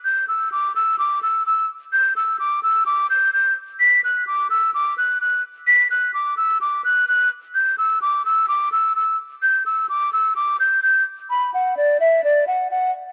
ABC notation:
X:1
M:4/4
L:1/8
Q:1/4=128
K:Edor
V:1 name="Flute"
g' e' d' e' d' e' e' z | g' e' d' e' d' g' g' z | b' f' d' e' d' f' f' z | b' f' d' e' d' f' f' z |
g' e' d' e' d' e' e' z | g' e' d' e' d' g' g' z | b f d e d f f z |]